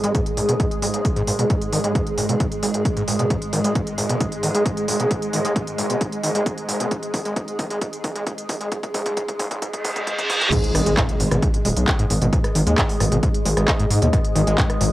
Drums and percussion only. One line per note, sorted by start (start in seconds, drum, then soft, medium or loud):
0.04 closed hi-hat medium
0.15 kick loud
0.15 closed hi-hat medium
0.26 closed hi-hat medium
0.37 open hi-hat loud
0.49 closed hi-hat medium
0.60 kick loud
0.60 closed hi-hat medium
0.71 closed hi-hat medium
0.82 open hi-hat loud
0.94 closed hi-hat medium
1.05 kick loud
1.05 closed hi-hat medium
1.16 closed hi-hat medium
1.27 open hi-hat loud
1.39 closed hi-hat medium
1.50 kick loud
1.50 closed hi-hat medium
1.61 closed hi-hat medium
1.72 open hi-hat loud
1.84 closed hi-hat medium
1.95 kick loud
1.95 closed hi-hat medium
2.07 closed hi-hat medium
2.18 open hi-hat loud
2.29 closed hi-hat medium
2.40 kick loud
2.40 closed hi-hat medium
2.52 closed hi-hat soft
2.63 open hi-hat loud
2.74 closed hi-hat medium
2.85 kick loud
2.85 closed hi-hat medium
2.97 closed hi-hat medium
3.08 open hi-hat loud
3.19 closed hi-hat medium
3.30 kick loud
3.30 closed hi-hat medium
3.42 closed hi-hat soft
3.53 open hi-hat loud
3.64 closed hi-hat medium
3.75 kick loud
3.75 closed hi-hat medium
3.87 closed hi-hat soft
3.98 open hi-hat loud
4.09 closed hi-hat medium
4.21 kick loud
4.21 closed hi-hat medium
4.32 closed hi-hat medium
4.43 open hi-hat loud
4.55 closed hi-hat medium
4.66 kick loud
4.66 closed hi-hat medium
4.77 closed hi-hat soft
4.88 open hi-hat loud
5.00 closed hi-hat medium
5.11 kick loud
5.11 closed hi-hat medium
5.22 closed hi-hat soft
5.33 open hi-hat loud
5.45 closed hi-hat medium
5.56 kick loud
5.56 closed hi-hat medium
5.67 closed hi-hat soft
5.78 open hi-hat loud
5.90 closed hi-hat medium
6.01 kick loud
6.01 closed hi-hat medium
6.12 closed hi-hat medium
6.24 open hi-hat loud
6.35 closed hi-hat medium
6.46 kick loud
6.46 closed hi-hat medium
6.58 closed hi-hat soft
6.69 open hi-hat loud
6.80 closed hi-hat medium
6.91 kick loud
6.91 closed hi-hat medium
7.03 closed hi-hat soft
7.14 kick loud
7.14 open hi-hat loud
7.25 closed hi-hat medium
7.36 kick loud
7.36 closed hi-hat medium
7.48 closed hi-hat soft
7.59 kick loud
7.59 open hi-hat medium
7.70 closed hi-hat medium
7.81 kick loud
7.81 closed hi-hat medium
7.93 closed hi-hat medium
8.04 kick loud
8.04 open hi-hat loud
8.16 closed hi-hat medium
8.27 kick loud
8.27 closed hi-hat medium
8.38 closed hi-hat medium
8.49 kick loud
8.49 open hi-hat loud
8.61 closed hi-hat medium
8.72 kick loud
8.72 closed hi-hat medium
8.83 kick medium
8.83 closed hi-hat medium
8.94 kick loud
8.94 open hi-hat loud
9.06 kick medium
9.06 closed hi-hat medium
9.17 kick loud
9.17 closed hi-hat medium
9.28 kick medium
9.28 closed hi-hat medium
9.39 kick loud
9.39 open hi-hat loud
9.51 kick medium
9.51 closed hi-hat medium
9.62 kick loud
9.62 closed hi-hat medium
9.73 kick medium
9.73 closed hi-hat medium
9.85 kick loud
9.85 open hi-hat loud
9.96 kick medium
9.96 closed hi-hat medium
10.07 kick loud
10.07 closed hi-hat medium
10.19 kick medium
10.19 closed hi-hat medium
10.30 kick loud
10.30 open hi-hat loud
10.41 kick medium
10.41 closed hi-hat medium
10.52 kick loud
10.52 closed hi-hat medium
10.52 crash loud
10.64 closed hi-hat medium
10.75 cross-stick medium
10.75 open hi-hat loud
10.86 closed hi-hat medium
10.97 kick loud
10.97 clap loud
10.97 closed hi-hat medium
11.09 closed hi-hat medium
11.20 open hi-hat loud
11.31 cross-stick medium
11.31 closed hi-hat medium
11.42 kick loud
11.42 closed hi-hat medium
11.54 closed hi-hat medium
11.65 open hi-hat loud
11.77 closed hi-hat medium
11.88 kick loud
11.88 cross-stick medium
11.88 clap loud
11.88 closed hi-hat medium
11.99 closed hi-hat medium
12.10 open hi-hat loud
12.22 closed hi-hat medium
12.33 kick loud
12.33 closed hi-hat medium
12.44 cross-stick medium
12.44 closed hi-hat medium
12.55 open hi-hat loud
12.67 closed hi-hat medium
12.78 kick loud
12.78 clap loud
12.78 closed hi-hat medium
12.89 open hi-hat medium
13.00 cross-stick medium
13.00 open hi-hat loud
13.12 closed hi-hat medium
13.23 kick loud
13.23 closed hi-hat medium
13.34 closed hi-hat medium
13.45 open hi-hat loud
13.57 cross-stick medium
13.57 closed hi-hat medium
13.68 kick loud
13.68 clap loud
13.68 closed hi-hat medium
13.79 closed hi-hat medium
13.90 open hi-hat loud
14.02 closed hi-hat medium
14.13 kick loud
14.13 cross-stick medium
14.13 closed hi-hat medium
14.24 closed hi-hat medium
14.36 open hi-hat loud
14.47 closed hi-hat medium
14.58 kick loud
14.58 clap loud
14.58 closed hi-hat medium
14.70 cross-stick medium
14.70 closed hi-hat medium
14.81 open hi-hat loud